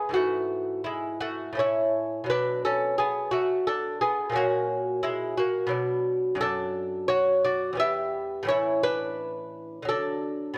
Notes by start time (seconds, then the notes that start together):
Already playing: B3 G#4
0.09 G#2 E3 B3
0.14 A3 F#4
0.84 G#3 E4
1.21 A3 F#4
1.53 A2 A3
1.57 C#4 E4 C#5
2.24 B2 F#3
2.30 D4 B4
2.65 C#4 A4
2.98 B3 G#4
3.31 A3 F#4
3.67 D4 A4
4.01 B3 G#4
4.30 A#2 F#3 C#4
4.36 A#3 F#4
5.03 G#3 E4
5.37 A#3 F#4
5.67 B2 F#3 D4
6.35 F#2 F#3
6.41 D4 A4
7.08 F#4 C#5
7.44 F#4 D5
7.73 E2 G3
7.77 B3 G4 E5
8.43 A2 E3 C#4
8.49 E4 C#5
8.83 D4 B4
9.82 D3 F#3
9.89 D4 A4
10.54 B2